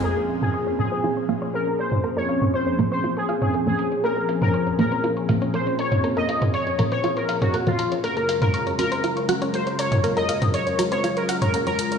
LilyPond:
<<
  \new Staff \with { instrumentName = "Synth arpeggio sound" } { \time 4/4 \key bes \minor \tempo 4 = 120 bes'16 bes'16 f''16 c''16 des'''16 des''16 bes''16 c''16 f'16 des'''16 f''16 des''16 bes'16 des''16 bes''16 des''16 | bes'16 bes'16 f''16 c''16 des'''16 des''16 bes''16 c''16 f'16 des'''16 f''16 des''16 bes'16 des''16 bes''16 des''16 | bes'16 bes'16 f''16 c''16 des'''16 des''16 bes''16 c''16 f'16 des'''16 f''16 des''16 bes'16 des''16 bes''16 des''16 | bes'16 bes'16 f''16 c''16 des'''16 des''16 bes''16 c''16 f'16 des'''16 f''16 des''16 bes'16 des''16 bes''16 des''16 |
bes'16 bes'16 f''16 c''16 des'''16 des''16 bes''16 c''16 f'16 des'''16 ges''16 des''16 bes'16 des''16 bes''16 des''16 | bes'16 bes'16 f''16 c''16 des'''16 des''16 bes''16 c''16 f'16 des'''16 ges''16 des''16 bes'16 des''16 bes''16 des''16 | }
  \new Staff \with { instrumentName = "Analog polysynth" } { \time 4/4 \key bes \minor aes'8 r16 aes'8 r16 aes'8 r4 bes'8 c''8 | r16 des''8 r16 c''8 r16 c''8 aes'8 aes'8 aes'8 r16 | bes'8 r16 bes'8 r16 bes'8 r4 c''8 des''8 | r16 ees''8 r16 des''8 r16 des''8 bes'8 ges'8 f'8 r16 |
bes'8 r16 bes'8 r16 bes'8 r4 c''8 des''8 | r16 ees''8 r16 des''8 r16 des''8 bes'8 bes'8 bes'8 r16 | }
  \new Staff \with { instrumentName = "Analog synth pad" } { \time 4/4 \key bes \minor <bes, f c' des' aes'>1~ | <bes, f c' des' aes'>1~ | <bes, f c' des' aes'>1~ | <bes, f c' des' aes'>1 |
<ges, des aes f' bes'>1~ | <ges, des aes f' bes'>1 | }
  \new Staff \with { instrumentName = "Synth stab" } { \clef bass \time 4/4 \key bes \minor r4. <bes, f bes>8 r8 <bes, f bes>8 r4 | r4. <bes, f bes>16 r4. <bes, f bes>16 r8 | r4. <bes, f bes>8 r8 <bes, f bes>8 r4 | r4. <bes, f bes>16 r4. <bes, f bes>16 r8 |
r4. <ges des' ges'>8 r8 <ges des' ges'>8 r4 | r4. <ges des' ges'>16 r4. <ges des' ges'>16 r8 | }
  \new DrumStaff \with { instrumentName = "Drums" } \drummode { \time 4/4 r8 hh16 <hh toml>16 hh8 hh16 hh16 hh8 hh16 hh16 hh16 hh16 hh16 <hh toml>16 | hh16 hh16 hh16 <hh toml>16 hh16 hh16 hh16 hh16 hh16 hh16 hh16 <hh toml>16 hh16 hh16 hh16 hh16 | hh16 hh16 hh16 <hh toml>16 hh16 hh16 hh16 hh16 hh16 hh16 hh16 hh16 hh16 hh16 hh16 <hh toml>16 | hh16 hh16 hh16 <hh toml>16 hh16 hh16 hh16 hh16 hh16 hh16 hh16 <hh toml>16 hh16 hh16 hh16 hh16 |
hh16 hh16 hh16 <hh toml>16 hh16 hh16 hh16 hh16 hh16 hh16 hh16 hh16 hh16 hh16 hh16 <hh toml>16 | hh16 hh16 hh16 <hh toml>16 hh16 hh16 hh16 hh16 hh16 hh16 hh16 <hh toml>16 hh16 hh16 hh16 hh16 | }
>>